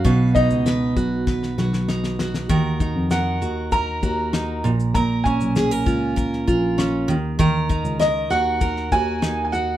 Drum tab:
SH |x-xxx-x---------|x-x-x-x-x-x-x-xx|x-xxx-x-x-x-x-x-|x-xxx-x-x-x-x-x-|
SD |----o---oooooooo|----o-------o---|----o----o--o---|----o----o--o---|
BD |o-o---o-o-------|o-o-----o-o-----|o-o---o-o-o-----|o-o-----o-o-----|